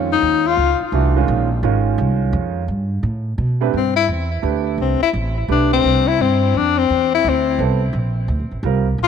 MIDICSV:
0, 0, Header, 1, 5, 480
1, 0, Start_track
1, 0, Tempo, 350467
1, 790, Time_signature, 3, 2, 24, 8
1, 12432, End_track
2, 0, Start_track
2, 0, Title_t, "Grand piano"
2, 0, Program_c, 0, 0
2, 0, Note_on_c, 0, 51, 62
2, 0, Note_on_c, 0, 56, 58
2, 0, Note_on_c, 0, 61, 58
2, 0, Note_on_c, 0, 65, 64
2, 685, Note_off_c, 0, 51, 0
2, 689, Note_off_c, 0, 56, 0
2, 692, Note_off_c, 0, 61, 0
2, 699, Note_off_c, 0, 65, 0
2, 1274, Note_on_c, 0, 52, 65
2, 1277, Note_on_c, 0, 57, 58
2, 1286, Note_on_c, 0, 62, 61
2, 1290, Note_on_c, 0, 66, 67
2, 1550, Note_off_c, 0, 52, 0
2, 1551, Note_off_c, 0, 57, 0
2, 1556, Note_off_c, 0, 62, 0
2, 1558, Note_off_c, 0, 66, 0
2, 1590, Note_on_c, 0, 51, 70
2, 1591, Note_on_c, 0, 56, 68
2, 1601, Note_on_c, 0, 61, 63
2, 1607, Note_on_c, 0, 65, 75
2, 2003, Note_off_c, 0, 51, 0
2, 2004, Note_off_c, 0, 56, 0
2, 2008, Note_off_c, 0, 61, 0
2, 2012, Note_off_c, 0, 65, 0
2, 2237, Note_on_c, 0, 51, 70
2, 2238, Note_on_c, 0, 56, 68
2, 2245, Note_on_c, 0, 65, 73
2, 2246, Note_on_c, 0, 61, 66
2, 3571, Note_off_c, 0, 51, 0
2, 3572, Note_off_c, 0, 56, 0
2, 3575, Note_off_c, 0, 65, 0
2, 3576, Note_off_c, 0, 61, 0
2, 4938, Note_on_c, 0, 48, 65
2, 4938, Note_on_c, 0, 57, 61
2, 4943, Note_on_c, 0, 62, 68
2, 4945, Note_on_c, 0, 67, 65
2, 4952, Note_on_c, 0, 71, 80
2, 5093, Note_off_c, 0, 48, 0
2, 5093, Note_off_c, 0, 57, 0
2, 5095, Note_off_c, 0, 62, 0
2, 5096, Note_off_c, 0, 67, 0
2, 5100, Note_off_c, 0, 71, 0
2, 6055, Note_on_c, 0, 57, 57
2, 6059, Note_on_c, 0, 62, 53
2, 6068, Note_on_c, 0, 71, 63
2, 6072, Note_on_c, 0, 67, 53
2, 6790, Note_off_c, 0, 57, 0
2, 6792, Note_off_c, 0, 62, 0
2, 6796, Note_off_c, 0, 71, 0
2, 6798, Note_off_c, 0, 67, 0
2, 7509, Note_on_c, 0, 57, 58
2, 7511, Note_on_c, 0, 62, 52
2, 7519, Note_on_c, 0, 67, 57
2, 7523, Note_on_c, 0, 71, 71
2, 8237, Note_off_c, 0, 57, 0
2, 8237, Note_off_c, 0, 62, 0
2, 8241, Note_off_c, 0, 67, 0
2, 8244, Note_off_c, 0, 71, 0
2, 10389, Note_on_c, 0, 59, 61
2, 10395, Note_on_c, 0, 64, 53
2, 10403, Note_on_c, 0, 69, 57
2, 10409, Note_on_c, 0, 72, 72
2, 10668, Note_off_c, 0, 59, 0
2, 10671, Note_off_c, 0, 64, 0
2, 10675, Note_off_c, 0, 69, 0
2, 10678, Note_off_c, 0, 72, 0
2, 11837, Note_on_c, 0, 55, 59
2, 11847, Note_on_c, 0, 65, 56
2, 11848, Note_on_c, 0, 60, 57
2, 11857, Note_on_c, 0, 70, 73
2, 12113, Note_off_c, 0, 55, 0
2, 12117, Note_off_c, 0, 65, 0
2, 12118, Note_off_c, 0, 60, 0
2, 12122, Note_off_c, 0, 70, 0
2, 12432, End_track
3, 0, Start_track
3, 0, Title_t, "Tenor saxophone"
3, 0, Program_c, 1, 66
3, 176, Note_on_c, 1, 63, 88
3, 647, Note_on_c, 1, 65, 93
3, 668, Note_off_c, 1, 63, 0
3, 1113, Note_off_c, 1, 65, 0
3, 5166, Note_on_c, 1, 60, 68
3, 5419, Note_off_c, 1, 60, 0
3, 5427, Note_on_c, 1, 64, 93
3, 5583, Note_off_c, 1, 64, 0
3, 6595, Note_on_c, 1, 60, 64
3, 6861, Note_off_c, 1, 60, 0
3, 6888, Note_on_c, 1, 64, 92
3, 6982, Note_off_c, 1, 64, 0
3, 7558, Note_on_c, 1, 62, 72
3, 7823, Note_off_c, 1, 62, 0
3, 7849, Note_on_c, 1, 60, 88
3, 8322, Note_on_c, 1, 64, 98
3, 8342, Note_off_c, 1, 60, 0
3, 8509, Note_on_c, 1, 60, 79
3, 8530, Note_off_c, 1, 64, 0
3, 8998, Note_on_c, 1, 62, 85
3, 9019, Note_off_c, 1, 60, 0
3, 9287, Note_on_c, 1, 60, 82
3, 9307, Note_off_c, 1, 62, 0
3, 9753, Note_off_c, 1, 60, 0
3, 9786, Note_on_c, 1, 64, 95
3, 9982, Note_on_c, 1, 60, 78
3, 10003, Note_off_c, 1, 64, 0
3, 10426, Note_off_c, 1, 60, 0
3, 12377, Note_on_c, 1, 65, 81
3, 12432, Note_off_c, 1, 65, 0
3, 12432, End_track
4, 0, Start_track
4, 0, Title_t, "Upright bass"
4, 0, Program_c, 2, 32
4, 0, Note_on_c, 2, 41, 89
4, 290, Note_off_c, 2, 41, 0
4, 301, Note_on_c, 2, 39, 79
4, 771, Note_off_c, 2, 39, 0
4, 784, Note_on_c, 2, 37, 82
4, 1074, Note_off_c, 2, 37, 0
4, 1261, Note_on_c, 2, 36, 89
4, 1731, Note_off_c, 2, 36, 0
4, 1752, Note_on_c, 2, 34, 91
4, 2217, Note_off_c, 2, 34, 0
4, 2230, Note_on_c, 2, 32, 88
4, 2696, Note_off_c, 2, 32, 0
4, 2711, Note_on_c, 2, 36, 92
4, 3176, Note_off_c, 2, 36, 0
4, 3187, Note_on_c, 2, 41, 95
4, 3654, Note_off_c, 2, 41, 0
4, 3671, Note_on_c, 2, 43, 83
4, 4136, Note_off_c, 2, 43, 0
4, 4148, Note_on_c, 2, 45, 87
4, 4615, Note_off_c, 2, 45, 0
4, 4628, Note_on_c, 2, 47, 90
4, 5095, Note_off_c, 2, 47, 0
4, 5115, Note_on_c, 2, 43, 81
4, 5579, Note_off_c, 2, 43, 0
4, 5587, Note_on_c, 2, 40, 85
4, 6054, Note_off_c, 2, 40, 0
4, 6066, Note_on_c, 2, 38, 83
4, 6533, Note_off_c, 2, 38, 0
4, 6542, Note_on_c, 2, 36, 80
4, 6833, Note_off_c, 2, 36, 0
4, 7031, Note_on_c, 2, 33, 89
4, 7496, Note_off_c, 2, 33, 0
4, 7511, Note_on_c, 2, 35, 86
4, 7976, Note_off_c, 2, 35, 0
4, 7994, Note_on_c, 2, 36, 81
4, 8458, Note_off_c, 2, 36, 0
4, 8467, Note_on_c, 2, 43, 90
4, 8934, Note_off_c, 2, 43, 0
4, 8954, Note_on_c, 2, 41, 82
4, 9418, Note_off_c, 2, 41, 0
4, 9445, Note_on_c, 2, 40, 84
4, 9903, Note_off_c, 2, 40, 0
4, 9922, Note_on_c, 2, 38, 90
4, 10382, Note_off_c, 2, 38, 0
4, 10390, Note_on_c, 2, 36, 90
4, 10851, Note_off_c, 2, 36, 0
4, 10859, Note_on_c, 2, 34, 84
4, 11331, Note_off_c, 2, 34, 0
4, 11342, Note_on_c, 2, 38, 89
4, 11501, Note_on_c, 2, 34, 51
4, 11522, Note_off_c, 2, 38, 0
4, 11652, Note_off_c, 2, 34, 0
4, 11661, Note_on_c, 2, 33, 64
4, 11809, Note_off_c, 2, 33, 0
4, 11817, Note_on_c, 2, 36, 92
4, 12290, Note_off_c, 2, 36, 0
4, 12303, Note_on_c, 2, 34, 81
4, 12432, Note_off_c, 2, 34, 0
4, 12432, End_track
5, 0, Start_track
5, 0, Title_t, "Muted upright bass strokes"
5, 1097, Note_on_c, 9, 29, 38
5, 1234, Note_off_c, 9, 29, 0
5, 6859, Note_on_c, 9, 29, 37
5, 6996, Note_off_c, 9, 29, 0
5, 12432, End_track
0, 0, End_of_file